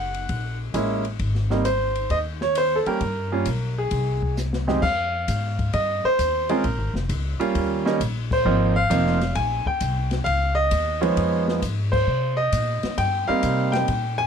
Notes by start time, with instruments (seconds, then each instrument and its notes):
Already playing: upright bass F#1, grand piano F#5
0.14 ride
0.29 upright bass A#1, kick, ride
0.74 upright bass A1, grand piano G#3 A#3 C#4 E4, hi-hat pedal, ride
1.05 ride
1.19 upright bass G#1, kick, ride
1.35 snare
1.50 grand piano G3 A#3 C4 D#4, snare
1.65 grand piano C5, hi-hat pedal, ride
1.95 ride
2.10 upright bass D#2, grand piano D#5, kick, ride
2.41 grand piano C#5, snare
2.55 grand piano C5, hi-hat pedal, ride
2.76 grand piano A4
2.86 grand piano G3 A#3 C#4 G4 A#4, muted upright bass stroke, ride
3.01 upright bass G2, kick, ride
3.32 grand piano G3 A#3 C#4 F4
3.46 upright bass B1, hi-hat pedal, ride
3.78 grand piano G#4
3.91 upright bass C2, kick, ride
4.23 kick
4.37 snare, hi-hat pedal
4.53 snare
4.67 grand piano F2 G#3 C4 D#4 G4, snare
4.82 upright bass F2, grand piano F5, kick, crash
5.28 upright bass G#2, kick, hi-hat pedal, ride
5.59 kick, ride
5.73 upright bass G2, grand piano D#5, kick, ride
6.04 grand piano C5, muted upright bass stroke
6.19 upright bass D#2, kick, hi-hat pedal, ride
6.49 grand piano G#3 C4 C#4 F4 A#4, ride
6.64 upright bass A#1, kick, ride
6.78 upright bass G#1
6.94 upright bass F1, snare
7.09 upright bass C#2, kick, hi-hat pedal, ride
7.40 grand piano G3 A#3 C#4 F4, muted upright bass stroke, ride
7.55 upright bass D#2, kick, ride
7.85 grand piano G3 A#3 C#4 D#4, snare
8.00 upright bass A#1, kick, hi-hat pedal, ride
8.31 grand piano C5, kick, crash
8.45 upright bass G#1, grand piano F3 A#3 C4 D#4
8.76 grand piano F5
8.90 upright bass F1, grand piano F3 A#3 C4 D#4, kick, hi-hat pedal, ride
9.06 snare
9.21 snare, ride
9.35 upright bass A#1, grand piano G#5, kick, ride
9.66 grand piano G5, muted upright bass stroke, kick
9.80 upright bass C2, kick, hi-hat pedal, ride
10.11 snare, ride
10.24 upright bass C#2, grand piano F5, kick, ride
10.55 grand piano D#5
10.71 upright bass D#2, kick, hi-hat pedal, ride
11.01 grand piano F3 G#3 B3 D#4 C#5, ride
11.17 upright bass F2, kick, ride
11.48 snare
11.62 upright bass G#2, kick, hi-hat pedal, ride
11.92 grand piano C5, kick, crash
12.07 upright bass C3
12.37 grand piano D#5
12.52 upright bass A#2, kick, hi-hat pedal, ride
12.83 muted upright bass stroke, snare, ride
12.98 upright bass G2, grand piano G5, kick, ride
13.28 grand piano G3 A#3 C4 D#4 F5, muted upright bass stroke
13.43 upright bass C3, kick, hi-hat pedal, ride
13.72 grand piano G5, snare, ride
13.88 upright bass A#2, kick, ride
14.18 grand piano G#5